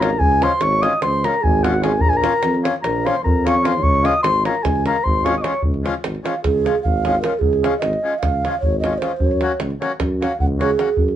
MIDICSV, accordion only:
0, 0, Header, 1, 2, 480
1, 0, Start_track
1, 0, Key_signature, -5, "major"
1, 0, Tempo, 401606
1, 224, Time_signature, 9, 3, 24, 8
1, 7662, Tempo, 396563
1, 13408, End_track
2, 0, Start_track
2, 0, Title_t, "Accordion"
2, 0, Program_c, 0, 21
2, 0, Note_on_c, 0, 61, 55
2, 0, Note_on_c, 0, 65, 69
2, 122, Note_off_c, 0, 61, 0
2, 125, Note_off_c, 0, 65, 0
2, 484, Note_on_c, 0, 53, 71
2, 489, Note_on_c, 0, 56, 71
2, 496, Note_on_c, 0, 61, 71
2, 509, Note_on_c, 0, 65, 80
2, 615, Note_off_c, 0, 53, 0
2, 617, Note_off_c, 0, 56, 0
2, 621, Note_off_c, 0, 61, 0
2, 627, Note_off_c, 0, 65, 0
2, 969, Note_on_c, 0, 53, 57
2, 973, Note_on_c, 0, 56, 49
2, 984, Note_on_c, 0, 61, 62
2, 991, Note_on_c, 0, 65, 67
2, 1104, Note_off_c, 0, 53, 0
2, 1106, Note_off_c, 0, 56, 0
2, 1111, Note_off_c, 0, 61, 0
2, 1115, Note_off_c, 0, 65, 0
2, 1477, Note_on_c, 0, 53, 63
2, 1484, Note_on_c, 0, 61, 56
2, 1486, Note_on_c, 0, 56, 55
2, 1493, Note_on_c, 0, 65, 62
2, 1605, Note_off_c, 0, 53, 0
2, 1608, Note_off_c, 0, 61, 0
2, 1609, Note_off_c, 0, 56, 0
2, 1613, Note_off_c, 0, 65, 0
2, 1939, Note_on_c, 0, 53, 71
2, 1947, Note_on_c, 0, 56, 71
2, 1954, Note_on_c, 0, 61, 64
2, 1955, Note_on_c, 0, 65, 81
2, 2070, Note_off_c, 0, 53, 0
2, 2073, Note_off_c, 0, 56, 0
2, 2077, Note_off_c, 0, 61, 0
2, 2077, Note_off_c, 0, 65, 0
2, 2154, Note_on_c, 0, 53, 64
2, 2165, Note_on_c, 0, 56, 57
2, 2174, Note_on_c, 0, 61, 56
2, 2178, Note_on_c, 0, 65, 71
2, 2288, Note_off_c, 0, 53, 0
2, 2293, Note_off_c, 0, 56, 0
2, 2298, Note_off_c, 0, 61, 0
2, 2299, Note_off_c, 0, 65, 0
2, 2646, Note_on_c, 0, 53, 79
2, 2650, Note_on_c, 0, 58, 70
2, 2663, Note_on_c, 0, 61, 68
2, 2667, Note_on_c, 0, 65, 77
2, 2780, Note_off_c, 0, 53, 0
2, 2782, Note_off_c, 0, 58, 0
2, 2788, Note_off_c, 0, 61, 0
2, 2790, Note_off_c, 0, 65, 0
2, 3139, Note_on_c, 0, 53, 64
2, 3143, Note_on_c, 0, 58, 54
2, 3152, Note_on_c, 0, 61, 62
2, 3152, Note_on_c, 0, 65, 68
2, 3271, Note_off_c, 0, 53, 0
2, 3273, Note_off_c, 0, 58, 0
2, 3278, Note_off_c, 0, 61, 0
2, 3278, Note_off_c, 0, 65, 0
2, 3637, Note_on_c, 0, 53, 68
2, 3638, Note_on_c, 0, 58, 56
2, 3648, Note_on_c, 0, 61, 56
2, 3654, Note_on_c, 0, 65, 70
2, 3766, Note_off_c, 0, 53, 0
2, 3766, Note_off_c, 0, 58, 0
2, 3771, Note_off_c, 0, 61, 0
2, 3774, Note_off_c, 0, 65, 0
2, 4114, Note_on_c, 0, 53, 77
2, 4118, Note_on_c, 0, 58, 57
2, 4125, Note_on_c, 0, 61, 66
2, 4136, Note_on_c, 0, 65, 77
2, 4237, Note_off_c, 0, 53, 0
2, 4239, Note_off_c, 0, 58, 0
2, 4242, Note_off_c, 0, 61, 0
2, 4248, Note_off_c, 0, 65, 0
2, 4330, Note_on_c, 0, 53, 65
2, 4335, Note_on_c, 0, 58, 63
2, 4338, Note_on_c, 0, 61, 51
2, 4354, Note_on_c, 0, 65, 78
2, 4455, Note_off_c, 0, 53, 0
2, 4457, Note_off_c, 0, 58, 0
2, 4459, Note_off_c, 0, 61, 0
2, 4467, Note_off_c, 0, 65, 0
2, 4806, Note_on_c, 0, 53, 70
2, 4819, Note_on_c, 0, 56, 67
2, 4824, Note_on_c, 0, 61, 69
2, 4826, Note_on_c, 0, 65, 84
2, 4938, Note_off_c, 0, 53, 0
2, 4944, Note_off_c, 0, 56, 0
2, 4947, Note_off_c, 0, 61, 0
2, 4948, Note_off_c, 0, 65, 0
2, 5302, Note_on_c, 0, 53, 61
2, 5310, Note_on_c, 0, 56, 60
2, 5315, Note_on_c, 0, 61, 54
2, 5324, Note_on_c, 0, 65, 67
2, 5430, Note_off_c, 0, 53, 0
2, 5434, Note_off_c, 0, 56, 0
2, 5437, Note_off_c, 0, 61, 0
2, 5442, Note_off_c, 0, 65, 0
2, 5803, Note_on_c, 0, 53, 57
2, 5806, Note_on_c, 0, 56, 52
2, 5809, Note_on_c, 0, 61, 59
2, 5824, Note_on_c, 0, 65, 71
2, 5925, Note_off_c, 0, 53, 0
2, 5927, Note_off_c, 0, 56, 0
2, 5928, Note_off_c, 0, 61, 0
2, 5936, Note_off_c, 0, 65, 0
2, 6260, Note_on_c, 0, 53, 69
2, 6262, Note_on_c, 0, 56, 59
2, 6270, Note_on_c, 0, 61, 62
2, 6275, Note_on_c, 0, 65, 80
2, 6386, Note_off_c, 0, 53, 0
2, 6388, Note_off_c, 0, 56, 0
2, 6392, Note_off_c, 0, 61, 0
2, 6394, Note_off_c, 0, 65, 0
2, 6479, Note_on_c, 0, 53, 65
2, 6489, Note_on_c, 0, 56, 54
2, 6494, Note_on_c, 0, 61, 61
2, 6503, Note_on_c, 0, 65, 72
2, 6606, Note_off_c, 0, 53, 0
2, 6611, Note_off_c, 0, 56, 0
2, 6613, Note_off_c, 0, 61, 0
2, 6618, Note_off_c, 0, 65, 0
2, 6971, Note_on_c, 0, 53, 74
2, 6971, Note_on_c, 0, 56, 69
2, 6989, Note_on_c, 0, 61, 70
2, 6992, Note_on_c, 0, 65, 83
2, 7096, Note_off_c, 0, 53, 0
2, 7096, Note_off_c, 0, 56, 0
2, 7105, Note_off_c, 0, 61, 0
2, 7107, Note_off_c, 0, 65, 0
2, 7451, Note_on_c, 0, 53, 56
2, 7454, Note_on_c, 0, 61, 51
2, 7456, Note_on_c, 0, 56, 48
2, 7471, Note_on_c, 0, 65, 68
2, 7581, Note_off_c, 0, 53, 0
2, 7582, Note_off_c, 0, 61, 0
2, 7583, Note_off_c, 0, 56, 0
2, 7590, Note_off_c, 0, 65, 0
2, 7936, Note_on_c, 0, 53, 54
2, 7944, Note_on_c, 0, 56, 44
2, 7947, Note_on_c, 0, 61, 50
2, 7962, Note_on_c, 0, 65, 68
2, 8070, Note_off_c, 0, 53, 0
2, 8074, Note_off_c, 0, 56, 0
2, 8076, Note_off_c, 0, 61, 0
2, 8083, Note_off_c, 0, 65, 0
2, 8420, Note_on_c, 0, 53, 56
2, 8434, Note_on_c, 0, 56, 54
2, 8438, Note_on_c, 0, 61, 59
2, 8455, Note_on_c, 0, 65, 76
2, 8547, Note_off_c, 0, 53, 0
2, 8554, Note_off_c, 0, 56, 0
2, 8556, Note_off_c, 0, 61, 0
2, 8564, Note_off_c, 0, 65, 0
2, 8652, Note_on_c, 0, 53, 48
2, 8655, Note_on_c, 0, 56, 61
2, 8668, Note_on_c, 0, 65, 61
2, 8671, Note_on_c, 0, 61, 47
2, 8774, Note_off_c, 0, 53, 0
2, 8775, Note_off_c, 0, 56, 0
2, 8782, Note_off_c, 0, 65, 0
2, 8783, Note_off_c, 0, 61, 0
2, 9130, Note_on_c, 0, 53, 70
2, 9136, Note_on_c, 0, 56, 69
2, 9152, Note_on_c, 0, 61, 62
2, 9152, Note_on_c, 0, 65, 81
2, 9259, Note_off_c, 0, 53, 0
2, 9262, Note_off_c, 0, 56, 0
2, 9270, Note_off_c, 0, 61, 0
2, 9271, Note_off_c, 0, 65, 0
2, 9616, Note_on_c, 0, 53, 47
2, 9629, Note_on_c, 0, 56, 51
2, 9630, Note_on_c, 0, 61, 52
2, 9637, Note_on_c, 0, 65, 69
2, 9749, Note_off_c, 0, 53, 0
2, 9755, Note_off_c, 0, 56, 0
2, 9756, Note_off_c, 0, 61, 0
2, 9759, Note_off_c, 0, 65, 0
2, 10115, Note_on_c, 0, 53, 49
2, 10123, Note_on_c, 0, 56, 54
2, 10124, Note_on_c, 0, 61, 52
2, 10136, Note_on_c, 0, 65, 65
2, 10244, Note_off_c, 0, 53, 0
2, 10248, Note_off_c, 0, 56, 0
2, 10248, Note_off_c, 0, 61, 0
2, 10254, Note_off_c, 0, 65, 0
2, 10586, Note_on_c, 0, 53, 57
2, 10590, Note_on_c, 0, 56, 58
2, 10602, Note_on_c, 0, 61, 53
2, 10604, Note_on_c, 0, 65, 66
2, 10712, Note_off_c, 0, 53, 0
2, 10715, Note_off_c, 0, 56, 0
2, 10720, Note_off_c, 0, 61, 0
2, 10721, Note_off_c, 0, 65, 0
2, 10811, Note_on_c, 0, 53, 63
2, 10822, Note_on_c, 0, 56, 57
2, 10826, Note_on_c, 0, 65, 64
2, 10829, Note_on_c, 0, 61, 50
2, 10935, Note_off_c, 0, 53, 0
2, 10941, Note_off_c, 0, 56, 0
2, 10943, Note_off_c, 0, 65, 0
2, 10944, Note_off_c, 0, 61, 0
2, 11293, Note_on_c, 0, 54, 76
2, 11295, Note_on_c, 0, 58, 60
2, 11306, Note_on_c, 0, 61, 69
2, 11310, Note_on_c, 0, 66, 81
2, 11421, Note_off_c, 0, 54, 0
2, 11422, Note_off_c, 0, 58, 0
2, 11428, Note_off_c, 0, 61, 0
2, 11430, Note_off_c, 0, 66, 0
2, 11770, Note_on_c, 0, 54, 71
2, 11774, Note_on_c, 0, 58, 63
2, 11777, Note_on_c, 0, 61, 60
2, 11787, Note_on_c, 0, 66, 74
2, 11904, Note_off_c, 0, 54, 0
2, 11906, Note_off_c, 0, 58, 0
2, 11908, Note_off_c, 0, 61, 0
2, 11913, Note_off_c, 0, 66, 0
2, 12254, Note_on_c, 0, 54, 61
2, 12260, Note_on_c, 0, 58, 51
2, 12267, Note_on_c, 0, 61, 64
2, 12277, Note_on_c, 0, 66, 64
2, 12390, Note_off_c, 0, 54, 0
2, 12393, Note_off_c, 0, 58, 0
2, 12396, Note_off_c, 0, 61, 0
2, 12402, Note_off_c, 0, 66, 0
2, 12713, Note_on_c, 0, 54, 61
2, 12718, Note_on_c, 0, 58, 67
2, 12731, Note_on_c, 0, 61, 68
2, 12735, Note_on_c, 0, 66, 75
2, 12852, Note_off_c, 0, 54, 0
2, 12854, Note_off_c, 0, 58, 0
2, 12861, Note_off_c, 0, 61, 0
2, 12863, Note_off_c, 0, 66, 0
2, 12938, Note_on_c, 0, 54, 61
2, 12951, Note_on_c, 0, 58, 60
2, 12956, Note_on_c, 0, 61, 50
2, 12964, Note_on_c, 0, 66, 67
2, 13073, Note_off_c, 0, 54, 0
2, 13080, Note_off_c, 0, 58, 0
2, 13082, Note_off_c, 0, 61, 0
2, 13086, Note_off_c, 0, 66, 0
2, 13408, End_track
0, 0, End_of_file